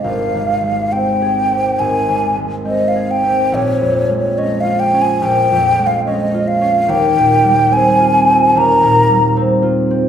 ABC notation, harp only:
X:1
M:4/4
L:1/8
Q:1/4=71
K:Ab
V:1 name="Harp"
(3[A,,,A,A] E,, A, (3C A C (3A,,, E,, A, (3C A C | (3B,,, F,, A, (3D F D (3B,,, F,, A, (3D F D | (3E,, B,, G, (3C F C (3E,, B,, G, (3C F C |]